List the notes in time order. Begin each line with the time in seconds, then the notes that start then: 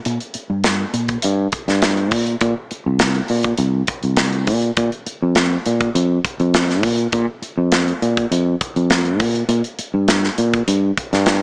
0.05 A#2, closed hi-hat
0.20 closed hi-hat
0.34 muted fretless electric bass stroke, closed hi-hat
0.50 G2
0.64 snare, closed hi-hat
0.94 A#2, closed hi-hat
1.08 kick, closed hi-hat
1.22 G2, closed hi-hat
1.52 kick, closed hi-hat
1.68 G2, snare, closed hi-hat
1.82 snare, closed hi-hat
1.97 closed hi-hat
2.11 A#2, kick, open hi-hat
2.27 closed hi-hat
2.41 A#2, kick, closed hi-hat
2.71 muted fretless electric bass stroke, closed hi-hat
2.86 C2
2.99 snare, closed hi-hat
3.15 closed hi-hat
3.28 A#2, open hi-hat
3.43 kick, closed hi-hat
3.58 C2, closed hi-hat
3.87 kick, closed hi-hat
4.03 C2, closed hi-hat
4.17 snare, closed hi-hat
4.33 closed hi-hat
4.47 A#2, kick, open hi-hat
4.62 closed hi-hat
4.77 A#2, kick, closed hi-hat
4.92 closed hi-hat
5.06 muted fretless electric bass stroke, closed hi-hat
5.22 F2
5.35 snare, closed hi-hat
5.66 A#2, closed hi-hat
5.80 kick, closed hi-hat
5.95 F2, closed hi-hat
6.25 kick, closed hi-hat
6.40 F2, closed hi-hat
6.54 snare, closed hi-hat
6.69 snare, closed hi-hat
6.83 A#2, kick, open hi-hat
6.98 closed hi-hat
7.12 A#2, kick, closed hi-hat
7.42 muted fretless electric bass stroke, closed hi-hat
7.58 F2
7.72 snare, closed hi-hat
7.88 closed hi-hat
8.02 A#2, closed hi-hat
8.17 kick, closed hi-hat
8.31 F2, closed hi-hat
8.61 kick, closed hi-hat
8.76 F2, closed hi-hat
8.90 snare, closed hi-hat
9.05 closed hi-hat
9.20 A#2, kick, open hi-hat
9.35 closed hi-hat
9.49 A#2, closed hi-hat
9.64 closed hi-hat
9.79 muted fretless electric bass stroke, closed hi-hat
9.94 G2
10.08 snare, closed hi-hat
10.24 snare
10.38 A#2, closed hi-hat
10.53 kick, closed hi-hat
10.68 G2, closed hi-hat
10.97 kick, closed hi-hat
11.13 G2, snare, closed hi-hat
11.26 snare, closed hi-hat